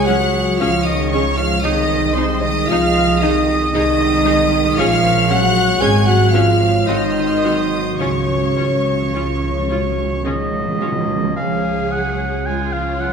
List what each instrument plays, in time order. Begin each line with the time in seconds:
Already playing: double bass section C#2, harp C#3 G#3 C#4 C#5, clarinet G#4, oboe C#5
0.05 cello section F#3, viola section C#4 G#4, french horn section F#4, harp G#4, violin section F#5 F#6, flute F#5
0.32 harp C#4
0.58 double bass section C#2, cello section F3, harp G#3, viola section C#4 G#4, french horn section F4, violin section F5 F6, flute F5
0.84 cello section D#3, harp C#4, french horn section D#4, violin section D#5 D#6, flute D#5
1.09 cello section C#3, harp G#3, french horn section C#4, viola section C#4, violin section C#5 C#6
1.13 viola section G#4, flute C#5
1.36 cello section F3, harp C#4, french horn section F4, violin section F5 F6, flute F5
1.61 double bass section C2, harp C3, cello section D#3, french horn section D#4, viola section D#4 G#4, flute D#5, violin section D#5 D#6, oboe D#5
1.65 clarinet G#4
1.88 harp C4
2.15 cello section C3, harp G#3, french horn section C4, viola section D#4 G#4, violin section C5 C6, flute C5
2.41 cello section D#3, french horn section D#4, harp D#4, violin section D#5 D#6, flute D#5
2.67 double bass section C2, cello section F3, viola section D#4 G#4, french horn section F4, harp G#4, violin section F5 F6, flute F5
2.94 harp D#4
3.21 cello section D#3, french horn section D#4, viola section D#4 G#4, harp G#4, violin section D#5 D#6, flute D#5
3.46 harp D#4
3.72 double bass section C2, cello section D#3, harp G#3, french horn section D#4, viola section D#4 G#4, flute D#5, violin section D#5 D#6
3.98 harp C4
4.24 harp G#3, viola section D#4 G#4
4.50 harp C4
4.77 double bass section A#1, harp A#2, cello section F3, viola section C#4 G#4, french horn section F4, oboe C#5, violin section F5 F6, flute F5
5.04 harp F3
5.29 cello section F#3, harp G#3, viola section C#4 G#4, french horn section F#4, violin section F#5 F#6, flute F#5
5.56 harp C#4
5.80 double bass section G#1, harp G#2, cello section G#3, viola section C#4 G#4, french horn section G#4, flute G#5, violin section G#5 G#6
6.06 harp F3, cello section F#3, french horn section F#4, violin section F#5 F#6, flute F#5
6.31 cello section F3, harp G#3, viola section C#4 G#4, french horn section F4, flute F5, violin section F5 F6
6.60 harp C#4
6.86 double bass section G#1, harp G#2, cello section D#3, viola section C4 F#4, french horn section D#4, clarinet F#4, oboe C5, flute D#5, violin section D#5 D#6
6.94 violin section F6
7.03 violin section D#6
7.11 violin section F6
7.16 harp D#3
7.20 violin section D#6
7.28 violin section F6
7.37 violin section D#6
7.43 harp F#3, viola section C4 F#4, violin section F6
7.52 violin section D#6
7.71 harp C4
7.98 double bass section C#2, cello section C#3, harp C#3, french horn section C#4, viola section C#4 F4, violin section C#5 C#6, flute C#5, oboe C#5
8.07 timpani C#3
8.15 timpani C#3
8.24 timpani C#3, harp F3
8.32 timpani C#3
8.39 timpani C#3
8.48 timpani C#3
8.55 timpani C#3, harp C#4, viola section C#4 F4
8.63 timpani C#3
8.71 timpani C#3
8.79 timpani C#3
8.84 timpani C#3, harp G#4
8.94 timpani C#3
9.01 timpani C#3
9.10 double bass section C#2, timpani C#3, harp F4, clarinet F4
9.14 timpani C#3, viola section C#4 F4
9.26 timpani C#3
9.34 timpani C#3
9.41 timpani C#3, harp C#5
9.51 timpani C#3
9.59 timpani C#3
9.67 timpani C#3, viola section C#4 F4, harp F4, clarinet F#4
9.75 timpani C#3
9.82 timpani C#3
9.90 timpani C#3
9.97 timpani C#3, harp G#4
10.05 timpani C#3
10.13 timpani C#3
10.22 double bass section C#2, timpani C#3, cello section D#3, harp C#4, viola section C#4 F4, clarinet G#4, oboe D#5
10.30 timpani C#3
10.37 timpani C#3
10.45 timpani C#3
10.52 timpani C#3, harp F3
10.60 timpani C#3
10.68 timpani C#3
10.76 timpani C#3, clarinet F#4
10.81 timpani C#3, harp C#4, viola section C#4 F4
10.92 timpani C#3
11.00 timpani C#3
11.08 timpani C#3, harp F3
11.16 timpani C#3
11.24 timpani C#3
11.36 double bass section C#2, harp C#3, cello section F3, french horn section G#3 C#4, violin section G#4 C#5, viola section G#4, oboe F5
11.74 harp G#3
11.91 cello section F#3, oboe F#5
12.10 harp C#4
12.46 cello section G#3, viola section F4, harp G#4, violin section G#4 C#5, oboe G#5
12.73 cello section F3, oboe F5
12.83 harp C#4
13.00 cello section F#3, oboe F#5